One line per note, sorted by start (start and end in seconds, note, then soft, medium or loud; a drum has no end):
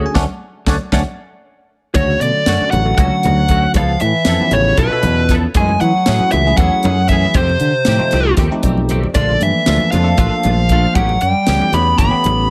0.00 0.15 D3 medium
0.00 0.15 F#3 medium
0.00 0.14 A3 medium
0.00 0.13 C#4 medium
0.00 0.16 G#4 medium
0.06 0.17 G#5 medium
0.14 0.25 D2 loud
0.14 0.23 A3 loud
0.14 0.24 A3 medium
0.14 0.23 C#4 loud
0.14 0.24 C#4 medium
0.14 0.23 D4 loud
0.14 0.24 D4 medium
0.14 0.23 C#5 medium
0.14 0.23 D5 loud
0.14 0.23 F#5 loud
0.14 kick medium
0.14 snare medium
0.14 high conga loud
0.66 0.76 D2 loud
0.66 0.75 A3 loud
0.66 0.76 A3 medium
0.66 0.75 C#4 medium
0.66 0.76 C#4 medium
0.66 0.75 D4 medium
0.66 0.76 D4 medium
0.66 0.76 C#5 medium
0.66 0.77 D5 loud
0.66 0.76 F#5 loud
0.66 kick medium
0.66 snare medium
0.66 high conga loud
0.92 1.02 D2 medium
0.92 1.01 A3 loud
0.92 1.01 A3 medium
0.92 1.01 C#4 loud
0.92 1.01 C#4 medium
0.92 1.01 D4 medium
0.92 1.02 C#5 medium
0.92 1.02 D5 medium
0.92 1.01 F#5 loud
0.92 kick medium
0.92 snare medium
0.92 high conga medium
1.94 2.15 D2 medium
1.94 2.20 C#3 medium
1.94 2.40 D3 medium
1.94 2.40 F#3 medium
1.94 2.40 A3 medium
1.94 2.11 A3 medium
1.94 2.41 C#4 medium
1.94 2.11 C#4 medium
1.94 2.41 F#4 medium
1.94 2.11 F#4 medium
1.94 2.22 C#5 medium
1.94 kick loud
1.94 closed hi-hat medium
1.94 high conga medium
1.94 low conga soft
2.08 low conga medium
2.20 2.31 B2 medium
2.20 2.70 D3 medium
2.20 2.68 D5 medium
2.20 closed hi-hat medium
2.46 2.57 F#2 medium
2.46 2.81 D3 medium
2.46 2.81 F#3 medium
2.46 2.81 A3 medium
2.46 2.62 A3 medium
2.46 2.81 C#4 medium
2.46 2.63 C#4 medium
2.46 2.81 F#4 medium
2.46 2.63 F#4 medium
2.46 snare loud
2.46 closed hi-hat medium
2.61 high conga medium
2.61 low conga soft
2.71 2.93 A1 medium
2.71 2.96 F#3 medium
2.71 2.97 F#5 medium
2.71 closed hi-hat medium
2.71 low conga medium
2.84 3.42 D3 medium
2.84 3.42 F#3 medium
2.84 3.42 A3 medium
2.84 3.42 C#4 medium
2.84 3.42 F#4 medium
2.84 low conga soft
2.98 3.08 C#2 medium
2.98 3.72 F#3 medium
2.98 3.14 A3 medium
2.98 3.14 C#4 medium
2.98 3.14 F#4 medium
2.98 3.71 F#5 medium
2.98 kick medium
2.98 closed hi-hat medium
3.23 3.65 D2 medium
3.23 3.40 C#4 soft
3.23 3.40 F#4 soft
3.23 closed hi-hat medium
3.23 high conga medium
3.23 low conga medium
3.48 3.75 D3 medium
3.48 3.76 F#3 medium
3.48 3.65 A3 medium
3.48 3.76 A3 medium
3.48 3.76 C#4 medium
3.48 3.66 C#4 medium
3.48 3.76 F#4 medium
3.48 3.66 F#4 medium
3.48 kick medium
3.48 closed hi-hat medium
3.74 3.95 C#2 medium
3.74 3.91 F3 medium
3.74 4.00 F3 medium
3.74 3.91 B3 medium
3.74 3.91 E4 medium
3.74 3.91 A4 medium
3.74 4.01 F5 medium
3.74 kick medium
3.74 closed hi-hat medium
3.74 high conga medium
3.74 low conga soft
4.00 4.12 A2 medium
4.00 4.54 E5 medium
4.00 closed hi-hat medium
4.05 4.51 E3 medium
4.25 4.36 F2 medium
4.25 4.42 F3 medium
4.25 4.38 F3 medium
4.25 4.43 B3 medium
4.25 4.39 B3 medium
4.25 4.39 C#4 medium
4.25 4.43 E4 medium
4.25 4.39 E4 medium
4.25 4.43 A4 medium
4.25 4.39 A4 medium
4.25 snare loud
4.25 closed hi-hat medium
4.40 4.85 F3 medium
4.40 4.85 B3 medium
4.40 4.86 C#4 medium
4.40 4.86 E4 medium
4.40 4.86 G4 medium
4.40 high conga medium
4.40 low conga soft
4.51 4.72 A1 medium
4.51 4.79 C#5 medium
4.51 closed hi-hat medium
4.51 low conga medium
4.56 4.78 C#3 medium
4.65 low conga soft
4.77 4.88 B1 medium
4.77 4.94 F3 medium
4.77 4.94 B3 medium
4.77 4.94 E4 medium
4.77 4.94 A4 medium
4.77 5.32 B4 medium
4.77 kick loud
4.77 closed hi-hat medium
4.82 5.34 B2 medium
4.91 5.48 B3 medium
4.91 5.48 C#4 medium
4.91 5.48 E4 medium
4.91 5.48 F4 medium
4.91 5.49 A4 medium
5.03 5.45 E2 medium
5.03 closed hi-hat medium
5.03 high conga medium
5.03 low conga medium
5.29 5.45 F3 medium
5.29 5.46 B3 medium
5.29 5.46 E4 medium
5.29 5.46 A4 medium
5.29 kick medium
5.29 snare soft
5.29 closed hi-hat medium
5.54 5.75 F#2 medium
5.54 5.71 E3 medium
5.54 6.01 F#3 medium
5.54 6.01 A3 medium
5.54 5.71 A3 medium
5.54 6.01 C#4 medium
5.54 5.71 C#4 medium
5.54 6.01 E4 medium
5.54 6.01 G#4 medium
5.54 5.71 G#4 medium
5.54 5.80 G#5 medium
5.54 kick loud
5.54 closed hi-hat medium
5.54 high conga medium
5.54 low conga soft
5.60 5.82 G#3 medium
5.69 low conga medium
5.80 5.91 E3 medium
5.80 6.30 F#3 medium
5.80 6.31 F#5 medium
5.80 closed hi-hat medium
5.80 low conga soft
5.94 low conga soft
6.06 6.17 A2 medium
6.06 6.22 E3 medium
6.06 6.41 F#3 medium
6.06 6.41 A3 medium
6.06 6.23 A3 medium
6.06 6.41 C#4 medium
6.06 6.23 C#4 medium
6.06 6.41 E4 medium
6.06 6.41 F#4 medium
6.06 6.23 G#4 medium
6.06 snare loud
6.06 closed hi-hat medium
6.20 high conga medium
6.20 low conga soft
6.31 6.53 C#2 medium
6.31 6.57 E3 medium
6.31 6.57 E5 medium
6.31 closed hi-hat medium
6.31 low conga medium
6.46 7.03 F#3 medium
6.46 7.03 A3 medium
6.46 7.03 C#4 medium
6.46 7.03 E4 medium
6.46 7.03 G#4 medium
6.46 low conga soft
6.57 6.68 E2 medium
6.57 6.74 E3 medium
6.57 7.07 F#3 medium
6.57 6.74 A3 medium
6.57 6.74 C#4 medium
6.57 6.75 G#4 medium
6.57 7.08 F#5 medium
6.57 kick loud
6.57 closed hi-hat medium
6.83 7.24 F#2 medium
6.83 7.00 A3 soft
6.83 7.00 C#4 soft
6.83 7.00 G#4 soft
6.83 closed hi-hat medium
6.83 high conga medium
6.83 low conga medium
7.08 7.34 E3 medium
7.08 7.26 E3 medium
7.08 7.35 F#3 medium
7.08 7.35 A3 medium
7.08 7.26 A3 medium
7.08 7.36 C#4 medium
7.08 7.26 C#4 medium
7.08 7.36 E4 medium
7.08 7.36 G#4 medium
7.08 7.26 G#4 medium
7.08 7.36 E5 medium
7.08 kick medium
7.08 closed hi-hat soft
7.34 7.55 F2 medium
7.34 8.35 C3 medium
7.34 7.51 D#3 medium
7.34 7.51 A3 medium
7.34 7.51 C4 medium
7.34 7.52 G4 medium
7.34 8.34 C5 medium
7.34 kick loud
7.34 closed hi-hat medium
7.34 high conga medium
7.49 low conga medium
7.60 7.71 D3 medium
7.60 closed hi-hat medium
7.85 7.97 A2 medium
7.85 8.03 D#3 medium
7.85 7.98 F3 medium
7.85 7.97 A3 medium
7.85 8.03 A3 medium
7.85 7.98 C4 medium
7.85 8.03 C4 medium
7.85 7.98 D#4 medium
7.85 7.99 G4 medium
7.85 8.03 G4 medium
7.85 snare medium
7.85 closed hi-hat medium
7.98 8.45 F3 medium
7.98 8.45 A3 medium
7.98 8.45 C4 medium
7.98 8.45 D#4 medium
7.98 8.45 F4 medium
7.98 high conga medium
8.11 8.33 C2 medium
8.11 8.29 A3 soft
8.11 8.29 C4 soft
8.11 8.29 G4 medium
8.11 snare soft
8.11 closed hi-hat medium
8.11 low conga medium
8.37 8.48 D#2 medium
8.37 8.54 D#3 medium
8.37 8.54 A3 medium
8.37 8.54 C4 medium
8.37 8.54 G4 medium
8.37 kick medium
8.37 snare soft
8.37 closed hi-hat medium
8.51 9.08 F3 medium
8.51 9.08 A3 medium
8.51 9.08 C4 medium
8.51 9.08 D#4 medium
8.51 9.08 G4 medium
8.63 9.04 B1 medium
8.63 8.80 A3 soft
8.63 8.80 C4 soft
8.63 8.80 G4 soft
8.63 9.11 D5 medium
8.63 kick medium
8.63 closed hi-hat medium
8.63 high conga medium
8.77 high conga medium
8.89 9.05 D#3 medium
8.89 9.06 A3 medium
8.89 9.06 C4 medium
8.89 9.06 G4 medium
8.89 closed hi-hat medium
8.89 low conga medium
9.04 low conga medium
9.14 9.36 A#1 medium
9.14 9.40 D3 medium
9.14 9.60 F3 medium
9.14 9.31 F3 medium
9.14 9.60 A3 medium
9.14 9.31 A3 medium
9.14 9.60 A#3 medium
9.14 9.60 D4 medium
9.14 9.31 D4 medium
9.14 9.31 F4 medium
9.14 9.61 A4 medium
9.14 9.42 D5 medium
9.14 kick medium
9.14 closed hi-hat medium
9.14 high conga medium
9.14 low conga soft
9.29 low conga medium
9.41 9.51 G2 medium
9.41 9.90 E3 medium
9.41 9.91 E5 medium
9.41 closed hi-hat medium
9.41 low conga soft
9.56 low conga soft
9.66 9.77 D2 medium
9.66 10.01 F3 medium
9.66 9.83 F3 medium
9.66 10.01 A3 medium
9.66 9.83 A3 medium
9.66 10.01 A#3 medium
9.66 10.01 D4 medium
9.66 9.83 D4 medium
9.66 9.83 F4 medium
9.66 10.01 A4 medium
9.66 snare loud
9.66 closed hi-hat medium
9.80 high conga medium
9.80 low conga soft
9.91 10.13 F2 medium
9.91 10.18 F3 medium
9.91 10.09 A3 soft
9.91 10.08 D4 soft
9.91 10.08 F4 soft
9.91 10.16 F5 medium
9.91 closed hi-hat medium
9.91 low conga medium
10.04 10.62 F3 medium
10.04 10.61 A3 medium
10.04 10.61 A#3 medium
10.04 10.61 D4 medium
10.04 10.62 A4 medium
10.08 low conga soft
10.18 10.28 A1 medium
10.18 10.92 F3 medium
10.18 10.34 F3 medium
10.18 10.34 A3 medium
10.18 10.35 D4 medium
10.18 10.35 F4 medium
10.18 10.95 F5 medium
10.18 kick medium
10.18 closed hi-hat medium
10.43 10.85 A#1 medium
10.43 10.60 A3 soft
10.43 10.60 D4 soft
10.43 10.60 F4 soft
10.43 closed hi-hat medium
10.43 high conga loud
10.69 10.96 F3 medium
10.69 10.86 F3 medium
10.69 10.96 A3 medium
10.69 10.86 A3 medium
10.69 10.96 A#3 medium
10.69 10.97 D4 medium
10.69 10.86 D4 medium
10.69 10.97 F4 medium
10.69 10.87 F4 medium
10.69 kick medium
10.69 closed hi-hat medium
10.95 11.16 A1 medium
10.95 11.12 E3 medium
10.95 11.20 F#3 medium
10.95 11.12 B3 medium
10.95 11.12 C#4 medium
10.95 11.12 G4 medium
10.95 11.22 F#5 medium
10.95 kick loud
10.95 closed hi-hat medium
10.95 high conga medium
10.95 low conga soft
11.09 low conga medium
11.21 11.32 F#2 medium
11.21 11.70 G3 medium
11.21 11.75 G5 medium
11.21 closed hi-hat medium
11.21 low conga soft
11.35 low conga soft
11.47 11.58 C#2 medium
11.47 11.59 E3 medium
11.47 11.63 E3 medium
11.47 11.59 A3 medium
11.47 11.59 B3 medium
11.47 11.63 B3 medium
11.47 11.59 C#4 medium
11.47 11.64 C#4 medium
11.47 11.59 G4 medium
11.47 11.64 G4 medium
11.47 snare loud
11.47 closed hi-hat medium
11.60 12.06 E3 medium
11.60 12.06 A3 medium
11.60 12.06 B3 medium
11.60 12.06 C#4 medium
11.60 12.06 G4 medium
11.60 high conga medium
11.60 low conga soft
11.72 11.93 E2 medium
11.72 11.89 B3 soft
11.72 11.98 B3 medium
11.72 11.89 C#4 soft
11.72 11.89 G4 soft
11.72 11.98 B5 medium
11.72 closed hi-hat medium
11.72 low conga medium
11.88 low conga soft
11.98 12.09 G1 medium
11.98 12.14 E3 medium
11.98 12.14 B3 medium
11.98 12.50 B3 medium
11.98 12.15 C#4 medium
11.98 12.15 G4 medium
11.98 12.50 B5 loud
11.98 kick medium
11.98 closed hi-hat medium
12.10 12.50 E3 medium
12.10 12.50 A3 medium
12.10 12.50 B3 medium
12.10 12.50 C#4 medium
12.10 12.50 G4 medium
12.24 12.50 A1 medium
12.24 closed hi-hat medium
12.24 high conga medium
12.24 low conga medium